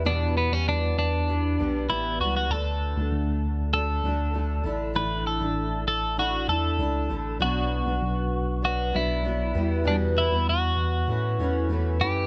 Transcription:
X:1
M:4/4
L:1/16
Q:1/4=98
K:Edor
V:1 name="Clean electric guitar"
D2 B, C D2 D6 E2 F F | A8 A8 | B2 A4 A2 F2 A6 | F8 F2 E6 |
D2 E2 F8- F2 G2 |]
V:2 name="Steel-string acoustic guitar"
[E,,B,,E,G,B,F]3 [E,G,B,F]4- [E,G,B,F] [E,G,B,F]2 [E,G,B,F]2 [E,G,B,F]2 [E,G,B,F]2 | [D,A,DF]3 [A,DF]4- [A,DF] [D,A,DF]2 [D,A,DF]2 [D,A,DF]2 [D,A,DE]2 | [A,,D,A,DE]3 [A,DE]4- [A,DE] [D,A,DE]2 [D,A,DE]2 [A,DE]2 [D,A,DE]2 | [B,,F,B,DF]3 [B,DF]4- [B,DF] [F,B,DF]2 [F,B,DF]2 [F,B,DF]2 [E,G,B,F]2 |
[E,,B,,E,G,B,F]3 [E,G,B,F]4- [E,G,B,F] [E,A,CE]2 [E,A,CE]2 [E,A,CE]2 [E,A,CE]2 |]
V:3 name="Tine electric piano" clef=bass
E,,3 E,,3 E,,4 B,,,2 A,,,2 C,,2 | D,,3 D,, D,,6 D,,4 A,,,2 | A,,,3 A,,,3 A,,,4 E,,2 C,,2 A,,,2 | B,,,3 B,,, B,,,6 B,,,4 E,,2 |
E,,3 E,,3 E,,2 A,,2 E,,2 E,,2 F,,2 |]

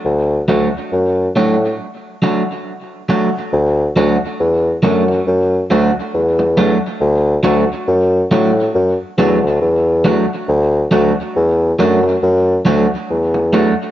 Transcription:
X:1
M:4/4
L:1/16
Q:"Swing 16ths" 1/4=69
K:D
V:1 name="Clean electric guitar"
z2 [F,A,DF]2 z2 [F,A,DF]2 z2 [F,A,DF]2 z2 [F,A,DF]2 | z2 [F,A,DF]2 z2 [F,A,DF]2 z2 [F,A,DF]2 z2 [F,A,DF]2 | z2 [F,A,DF]2 z2 [F,A,DF]2 z2 [F,A,DF]2 z2 [F,A,DF]2 | z2 [F,A,DF]2 z2 [F,A,DF]2 z2 [F,A,DF]2 z2 [F,A,DF]2 |]
V:2 name="Bassoon" clef=bass
D,,2 D,, z F,,2 A,,2 z8 | D,,2 D,, z E,,2 F,,2 F,,2 D,, z E,,3 z | D,,2 D,, z F,,2 A,,2 F,, z E,, D,, E,,3 z | D,,2 D,, z E,,2 F,,2 F,,2 D,, z E,,3 z |]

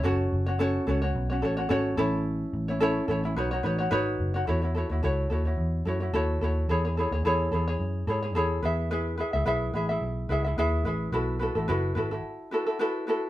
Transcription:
X:1
M:4/4
L:1/16
Q:"Swing 16ths" 1/4=108
K:F#dor
V:1 name="Ukulele"
[CFAc]3 [CFc] [CFAc]2 [CFAc] [CFc]2 [CFc] [CFAc] [CFc] [CFAc]2 [CEAc]2- | [CEAc]3 [CEc] [CEAc]2 [CEAc] [CEc] [DFBc] [DFc] [DFBc] [DFc] [DFBc]3 [DFc] | [EFAc] [EFc] [EFAc] [EFc] [EFAc]2 [EFAc] [EFc]3 [EFAc] [EFc] [EFAc]2 [EFAc]2 | [EGAc] [EGc] [EGAc] [EGc] [EGAc]2 [EGAc] [EGc]3 [EGAc] [EGc] [EGAc]2 [EGBe]2 |
[EGBe]2 [EGBe] [EGe] [EGBe]2 [EGBe] [EGe]3 [EGBe] [EGe] [EGBe]2 [EGBe]2 | [EFAB]2 [EFAB] [EFA] [EFAB]2 [EFAB] [EFA]3 [EFAB] [EFA] [EFAB]2 [EFAB]2 |]
V:2 name="Picked electric bass" clef=bass
F,,,2 F,,,4 C,,2 B,,,2 A,,,2 G,,,2 A,,,2- | A,,,2 A,,,4 A,,,2 B,,,2 A,,,2 G,,,2 F,,,2 | E,,3 D,, C,,2 D,,2 E,,2 F,,2 D,,2 D,,2 | E,,3 D,, E,,2 E,,2 F,,2 G,,2 E,,2 E,,2- |
E,,3 C,, B,,,2 A,,,2 B,,,2 C,,2 D,,2 A,,,2 | B,,,3 A,,, F,,,2 G,,,2 z8 |]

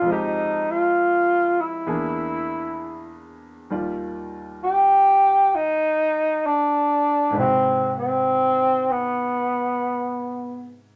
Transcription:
X:1
M:4/4
L:1/8
Q:"Swing" 1/4=66
K:Eb
V:1 name="Alto saxophone"
E F2 =E4 z | z2 G2 E2 D2 | C C2 =B,4 z |]
V:2 name="Grand piano" clef=bass
[F,,F,A,Ge]4 [=E,,=E,^A,D^G]4 | [E,,E,G,Fd]8 | [A,,C,A,=E_G=B]8 |]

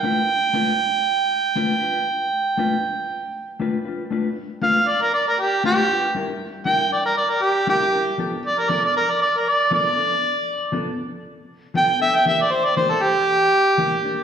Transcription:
X:1
M:4/4
L:1/16
Q:"Swing 16ths" 1/4=118
K:Gmix
V:1 name="Harmonica"
g16- | g12 z4 | z4 f2 d _B d B G2 G4 | z4 g2 d _B d B G2 G4 |
z2 d _B d d B d d B d2 d4- | d4 z8 g2 e g | e d c d c A G8- G2 |]
V:2 name="Clean electric guitar"
[A,DFB]2 z2 [A,DFB]2 z6 [A,DFB]2 [DFB]2 | z4 [A,DFB]2 z6 [A,DFB]2 [DFB]2 | [A,DFB]2 z2 [A,DFB]2 z6 [A,DFB]2 [DFB]2 | [G,DE_B]2 z2 [G,DEB]2 z6 [G,DEB]2 [DEB]2 |
[F,B,DA]2 z2 [F,B,DA]2 z6 [F,B,DA]2 [B,DA]2 | z4 [F,B,DA]2 z6 [F,B,DA]2 [B,DA]2 | [E,_B,DG]2 z2 [E,B,DG]2 z6 [E,B,DG]2 [B,DG]2 |]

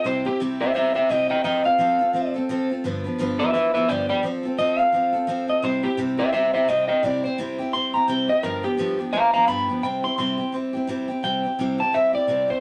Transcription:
X:1
M:4/4
L:1/8
Q:"Swing" 1/4=172
K:C
V:1 name="Clean electric guitar"
c G z [ce] [ce] [ce] [_eg] [eg] | [_eg] f4 z3 | z3 [Be] [Be] [Be] [dg] [dg] | z2 _e f4 e |
c G z [ce] [ce] [ce] [_eg] [eg] | d c z2 c' _b g _e | _B G2 z [f_b] [fb] =b2 | g c' c'2 z4 |
g3 a e d2 c |]
V:2 name="Steel-string acoustic guitar"
[C,G,CEG] [CEG] [C,G,CEG] [CEG] [G,CEG] [CEG] [C,G,CEG] [CEG] | [F,CFA] [CFA] [F,CFA] [CFA] [F,CFA] [CFA] [F,CFA] [CFA] | [G,,D,F,B,DB] [F,B,DB] [G,,D,F,B,DB] [F,B,DB] [F,B,DB] [F,B,DB] [G,,D,F,B,DB] [F,B,DB] | [F,CFA] [CFA] [F,CFA] [CFA] [F,CFA] [CFA] [F,CFA] [CFA] |
[C,G,CEG] [CEG] [C,G,CEG] [CEG] [G,CEG] [CEG] [C,G,CEG] [CEG] | [C,G,CEG] [CEG] [C,G,CEG] [CEG] [G,CEG] [CEG] [C,G,CEG] [CEG] | [G,,D,F,B,DG] [F,B,DG] [G,,D,F,B,DG] [F,B,DG] [F,B,DG] [F,B,DG] [G,,D,F,B,DG] [F,B,DG] | [C,G,CEG] [CEG] [C,G,CEG] [CEG] [G,CEG] [CEG] [C,G,CEG] [CEG] |
[C,G,CEG] [CEG] [C,G,CEG] [CEG] [G,CEG] [CEG] [C,G,CEG] [CEG] |]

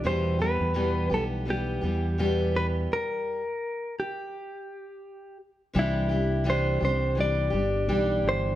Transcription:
X:1
M:4/4
L:1/16
Q:"Swing 16ths" 1/4=84
K:C
V:1 name="Clean electric guitar"
c2 B4 A2 G6 B2 | _B6 G8 z2 | E4 c2 c2 d6 c2 |]
V:2 name="Steel-string acoustic guitar" clef=bass
[E,,B,,E,G,G]2 [E,G,B,G]2 [E,,B,,E,G,B,G]2 [E,G,B,G]2 [E,G,B,G]2 [E,G,B,G]2 [E,,B,,E,G,B,G]4 | z16 | [C,E,G,DG]2 [G,DG]2 [C,E,G,DG]2 [G,DG]2 [E,G,DG]2 [G,DG]2 [E,G,DG]4 |]
V:3 name="Fingered electric bass" clef=bass
E,,3 E,,3 B,,,4 E,,6 | z16 | C,,6 C,,4 G,,,2 B,,,2 G,,,2 |]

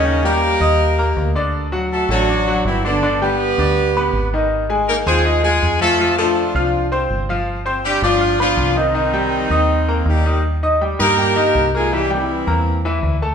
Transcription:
X:1
M:4/4
L:1/8
Q:1/4=162
K:Cm
V:1 name="Grand piano"
[E,Ee] [G,Gg]2 [Eee']2 [B,Bb]2 [D,Dd]- | [D,Dd] [^F,^F^f]2 [=A,=A=a] [Ddd'] [F,Ff]2 [D,Dd] | [D,Dd] [G,Gg]2 [Ddd']2 [=B,=B=b]2 [E,Ee]- | [E,Ee] [A,Aa]2 [Ccc'] [Eee'] [A,Aa]2 [F,Ff] |
[F,Ff] [=A,=A=a]2 [Fff']2 [Ccc']2 [F,Ff]- | [F,Ff] [Ccc']2 [Ddd'] [Fff'] [=B,=B=b]2 [E,Ee] | [E,Ee] [G,Gg]2 [Eee']2 [B,Bb]2 [E,Ee] | z [Eee'] [G,Gg] [E,Ee] [G,Gg] [E,Ee]2 [B,Bb] |
[=E,=E=e] [G,Gg]2 [B,Bb]2 [E,Ee]2 [=A,=A=a] |]
V:2 name="Horn section"
[_D,B,_D] [B,GB]6 z | z2 [=A,^F=A] [^F,DF]3 [=E,C=E] [D,=B,D]- | [D,=B,D] [B,G=B]6 z | z2 [B,EB] [A,FA]2 [A,FA]2 [=A,F=A]- |
[=A,F=A] [F,DF]2 [F,DF]2 z3 | z2 [G,DG] [F,DF]2 [F,DF]2 [E,CE]- | [E,CE]6 [G,EG]2 | z3 [B,GB]4 [A,FA] |
[G,=EG] [=E,CE]4 z3 |]
V:3 name="Fingered electric bass" clef=bass
E,,3 E,,3 D,,2- | D,,3 =A,,,3 G,,,2- | G,,,3 D,,3 A,,,2- | A,,,3 E,,3 F,,2- |
F,,3 C,,3 G,,,2- | G,,,3 G,,,3 C,,2- | C,,3 E,,3 E,,2- | E,,3 G,,3 C,,2- |
C,,3 =E,,3 D,,2 |]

